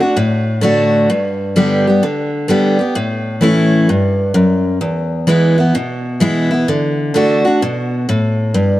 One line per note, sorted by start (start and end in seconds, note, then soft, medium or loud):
0.00 0.18 D4 soft
0.00 0.16 F#4 medium
0.16 1.07 A2 medium
0.61 1.07 D3 medium
0.61 1.08 A3 medium
0.61 1.08 D4 medium
0.61 1.09 F#4 medium
1.10 2.00 G2 medium
1.56 1.85 D3 medium
1.56 1.86 G3 loud
1.56 1.86 B3 medium
1.56 1.86 G4 medium
1.87 2.04 B3 soft
1.87 2.03 G4 medium
2.03 2.47 D3 medium
2.48 2.78 D3 medium
2.48 2.78 G3 medium
2.48 2.79 B3 loud
2.48 2.78 G4 medium
2.79 2.96 B3 soft
2.79 2.95 G4 medium
2.95 3.85 A2 medium
3.41 3.87 E3 medium
3.41 3.87 A3 medium
3.41 3.88 C#4 medium
3.41 3.88 E4 loud
3.89 4.34 G2 medium
4.34 4.80 F#2 medium
4.81 5.71 E2 medium
5.27 5.57 E3 medium
5.27 5.57 G#3 medium
5.27 5.58 B3 loud
5.27 5.57 E4 loud
5.58 5.75 B3 medium
5.58 5.74 E4 medium
5.75 6.65 B2 medium
6.20 6.50 E3 medium
6.20 6.50 G#3 medium
6.20 6.51 B3 medium
6.20 6.49 E4 medium
6.51 6.68 B3 soft
6.51 6.67 E4 medium
6.68 7.13 D3 medium
7.14 7.43 D3 medium
7.14 7.44 A3 medium
7.14 7.44 D4 medium
7.14 7.44 F#4 medium
7.45 7.62 D4 medium
7.45 7.60 F#4 medium
7.62 8.07 B2 medium
8.09 8.53 A2 medium
8.54 8.80 G2 medium